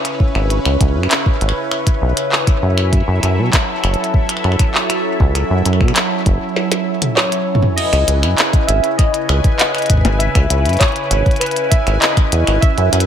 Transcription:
Already playing: analog synth pad C#3 C#4 B4 C#5, synth texture E4 E5
0.05 finger snap, closed hi-hat
0.20 kick
0.35 acid bass G#1, finger snap
0.50 closed hi-hat
0.65 acid bass C#2, finger snap
0.81 acid bass C#2, kick, closed hi-hat
0.96 acid bass F#2
1.03 finger snap
1.11 clap, closed hi-hat
1.26 kick
1.41 acid bass G#1, closed hi-hat
1.49 finger snap
1.71 finger snap
1.87 kick, closed hi-hat
2.02 acid bass B1
2.17 finger snap, closed hi-hat
2.32 clap
2.47 finger snap, kick, closed hi-hat
2.62 acid bass F#2
2.78 finger snap
2.93 analog synth pad F#3, kick, closed hi-hat
3.08 acid bass F#2
3.13 analog synth pad A4
3.23 acid bass F#2, finger snap, closed hi-hat
3.38 acid bass B2
3.53 finger snap, kick, clap, closed hi-hat
3.84 acid bass F#1, finger snap, closed hi-hat
3.94 closed hi-hat
4.04 closed hi-hat
4.14 kick
4.29 finger snap, closed hi-hat
4.37 finger snap
4.44 acid bass F#2, finger snap
4.52 finger snap
4.59 finger snap, kick, closed hi-hat
4.75 clap
4.90 finger snap, closed hi-hat
5.20 acid bass C#2, kick
5.35 finger snap, closed hi-hat
5.50 acid bass F#2
5.65 acid bass F#2, finger snap, closed hi-hat
5.73 finger snap
5.81 acid bass B2, finger snap, kick
5.88 finger snap
5.96 finger snap, clap, closed hi-hat
6.26 acid bass F#1, kick, closed hi-hat
6.56 snare
6.72 snare, closed hi-hat
7.02 closed hi-hat, mid tom
7.16 synth keys C#5, snare, clap
7.32 closed hi-hat
7.55 mid tom
7.62 mid tom
7.76 analog synth pad C#3, synth texture B4 G#5, synth keys D#5, closed hi-hat, crash
7.93 acid bass C#2, finger snap, closed hi-hat
8.08 acid bass C#2, closed hi-hat
8.17 analog synth pad E4
8.22 acid bass F#2, analog synth pad C#4, finger snap, closed hi-hat
8.38 clap, closed hi-hat
8.53 kick, closed hi-hat
8.67 acid bass G#1, synth keys E5, closed hi-hat
8.84 closed hi-hat
8.97 synth keys D#5, finger snap, kick, closed hi-hat
9.11 analog synth pad B4, closed hi-hat
9.29 acid bass C#2, finger snap
9.44 kick, closed hi-hat
9.58 synth keys D#5, clap, closed hi-hat
9.75 finger snap, closed hi-hat
9.78 closed hi-hat
9.82 closed hi-hat
9.86 closed hi-hat
9.90 kick, closed hi-hat
9.94 kick
9.97 kick
10.01 acid bass G#1, finger snap, kick, closed hi-hat, percussion blips
10.19 synth keys E5, closed hi-hat
10.35 acid bass C#2, finger snap, kick, closed hi-hat
10.50 acid bass C#2, closed hi-hat
10.65 acid bass F#2, closed hi-hat
10.69 closed hi-hat
10.73 closed hi-hat
10.77 synth keys C#5, finger snap, clap, closed hi-hat
10.81 kick, closed hi-hat
10.88 closed hi-hat
10.92 closed hi-hat
10.96 closed hi-hat
11.11 acid bass G#1, finger snap, closed hi-hat
11.26 kick, closed hi-hat
11.31 closed hi-hat
11.36 synth keys B4, closed hi-hat
11.41 finger snap, closed hi-hat
11.46 closed hi-hat
11.51 closed hi-hat
11.56 closed hi-hat
11.70 synth keys E5, kick, closed hi-hat
11.87 acid bass G#1, finger snap, closed hi-hat
12.00 synth keys D#5, clap, closed hi-hat
12.17 finger snap, kick, closed hi-hat
12.32 acid bass E2, closed hi-hat
12.47 acid bass G#1, finger snap, closed hi-hat
12.61 analog synth pad F#3, synth keys E5, kick, closed hi-hat
12.78 acid bass F#2, closed hi-hat
12.93 acid bass F#2, finger snap, closed hi-hat
13.00 analog synth pad A4, closed hi-hat

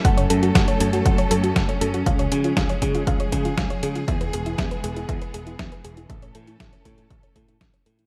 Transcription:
0.05 picked electric bass F#1, string section F#3 A3 C#4 A4, synth arpeggio sound F#5, kick, closed hi-hat
0.17 synth arpeggio sound C#5, closed hi-hat
0.30 picked electric bass F#2, synth arpeggio sound A4, closed hi-hat
0.43 synth arpeggio sound F#4, closed hi-hat
0.55 picked electric bass F#1, synth arpeggio sound F#5, kick, snare, closed hi-hat
0.68 synth arpeggio sound C#5, closed hi-hat
0.80 picked electric bass F#2, synth arpeggio sound A4, closed hi-hat
0.93 synth arpeggio sound F#4, closed hi-hat
1.06 picked electric bass F#1, synth arpeggio sound F#5, kick, closed hi-hat
1.18 synth arpeggio sound C#5, closed hi-hat
1.31 picked electric bass F#2, synth arpeggio sound A4, closed hi-hat
1.44 synth arpeggio sound F#4, closed hi-hat
1.56 picked electric bass F#1, synth arpeggio sound F#5, kick, snare, closed hi-hat
1.69 synth arpeggio sound C#5, closed hi-hat
1.81 picked electric bass F#2, synth arpeggio sound A4, closed hi-hat
1.94 synth arpeggio sound F#4, closed hi-hat
2.06 picked electric bass C#2, string section F3 G#3 G#4, synth arpeggio sound F5, kick, closed hi-hat
2.19 synth arpeggio sound C#5, closed hi-hat
2.32 picked electric bass C#3, synth arpeggio sound G#4, closed hi-hat
2.44 synth arpeggio sound F4, closed hi-hat
2.57 picked electric bass C#2, synth arpeggio sound F5, kick, snare, closed hi-hat
2.69 synth arpeggio sound C#5, closed hi-hat
2.82 picked electric bass C#3, synth arpeggio sound G#4, kick, closed hi-hat
2.95 synth arpeggio sound F4, closed hi-hat
3.07 picked electric bass C#2, synth arpeggio sound F5, kick, closed hi-hat
3.20 synth arpeggio sound C#5, closed hi-hat
3.32 picked electric bass C#3, synth arpeggio sound G#4, kick, closed hi-hat
3.45 synth arpeggio sound F4, closed hi-hat
3.57 picked electric bass C#2, synth arpeggio sound F5, kick, snare, closed hi-hat
3.70 synth arpeggio sound C#5, closed hi-hat
3.83 picked electric bass C#3, synth arpeggio sound G#4, closed hi-hat
3.95 synth arpeggio sound F4, closed hi-hat
4.08 picked electric bass E2, string section E3 G#3 B3, synth arpeggio sound E5, kick, closed hi-hat
4.21 synth arpeggio sound B4, closed hi-hat
4.33 picked electric bass E1, synth arpeggio sound G#4, closed hi-hat
4.46 synth arpeggio sound E4, closed hi-hat
4.58 picked electric bass E2, synth arpeggio sound E5, kick, snare, closed hi-hat
4.71 synth arpeggio sound B4, closed hi-hat
4.84 picked electric bass E1, synth arpeggio sound G#4, closed hi-hat
4.96 synth arpeggio sound E4, closed hi-hat
5.09 picked electric bass E2, synth arpeggio sound E5, kick, closed hi-hat
5.22 synth arpeggio sound B4, closed hi-hat
5.34 picked electric bass E1, synth arpeggio sound G#4, closed hi-hat
5.47 synth arpeggio sound E4, closed hi-hat
5.59 picked electric bass E2, synth arpeggio sound E5, kick, snare, closed hi-hat
5.72 synth arpeggio sound B4, closed hi-hat
5.85 picked electric bass E1, synth arpeggio sound G#4, closed hi-hat
5.97 synth arpeggio sound E4, closed hi-hat
6.10 picked electric bass A1, string section A3 C#4 A4, synth arpeggio sound E5, kick, closed hi-hat
6.22 synth arpeggio sound C#5, closed hi-hat
6.35 picked electric bass A2, synth arpeggio sound A4, closed hi-hat
6.47 synth arpeggio sound E4, closed hi-hat
6.60 picked electric bass A1, synth arpeggio sound E5, kick, snare, closed hi-hat
6.73 synth arpeggio sound C#5, closed hi-hat
6.85 picked electric bass A2, synth arpeggio sound A4, kick, closed hi-hat
6.98 synth arpeggio sound E4, closed hi-hat
7.10 picked electric bass A1, synth arpeggio sound E5, kick, closed hi-hat
7.23 synth arpeggio sound C#5, closed hi-hat
7.36 picked electric bass A2, synth arpeggio sound A4, kick, closed hi-hat
7.48 synth arpeggio sound E4, closed hi-hat
7.61 picked electric bass A1, synth arpeggio sound E5, kick, snare, closed hi-hat
7.74 synth arpeggio sound C#5, closed hi-hat
7.86 picked electric bass A2, synth arpeggio sound A4, closed hi-hat
7.99 synth arpeggio sound E4, closed hi-hat

